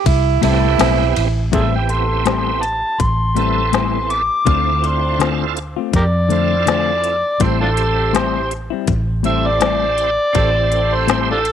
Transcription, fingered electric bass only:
0.06 0.38 C2 loud
0.43 0.76 C2 medium
0.80 1.13 B1 medium
1.17 1.50 A1 medium
1.53 2.81 A1 loud
3.00 4.28 A1 medium
4.47 5.75 D2 medium
5.94 7.22 F2 loud
7.40 8.69 A1 loud
8.88 10.16 A1 loud
10.35 11.52 A1 medium

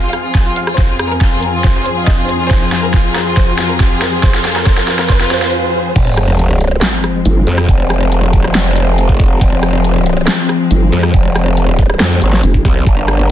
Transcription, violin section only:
0.02 0.09 F4 medium
0.13 0.20 F5 medium
0.24 0.31 F4 medium
0.35 0.42 G#5 medium
0.46 0.53 F4 medium
0.56 0.63 F5 medium
0.67 0.74 F4 medium
0.78 0.85 C5 loud
0.89 0.96 F4 medium
0.99 1.07 F4 medium
1.10 1.17 A#4 loud
1.21 1.28 F4 medium
1.32 1.39 F4 medium
1.43 1.50 A#4 medium
1.54 1.61 F4 medium
1.64 1.71 C5 medium
1.75 1.82 F4 medium
1.86 1.93 C5 medium
1.97 2.04 F4 medium
2.07 2.15 D#5 medium
2.18 2.25 F4 medium
2.29 2.36 C5 medium
2.40 2.47 F4 medium
2.51 2.58 C5 medium
2.62 2.69 F4 medium
2.72 2.79 F4 medium
2.83 2.90 A#4 medium
2.94 3.01 F4 medium
3.05 3.12 F4 medium
3.15 3.23 A#4 medium
3.26 3.33 F4 medium
3.37 3.44 C5 loud
3.48 3.55 F4 medium
3.59 3.66 F4 medium
3.70 3.76 A#4 medium
3.80 3.87 F4 medium
3.91 3.98 F4 medium
4.02 4.09 A#4 medium
4.13 4.20 F4 medium
4.23 4.30 C5 loud
4.34 4.41 F4 medium
4.45 4.52 F4 medium
4.56 4.63 A#4 loud
4.67 4.74 C5 loud
4.77 4.84 F4 medium
4.88 4.95 F4 medium
4.99 5.06 A#4 medium
5.10 5.17 C5 loud
5.21 5.28 F4 medium
5.31 5.38 C5 loud
5.42 5.49 F4 medium

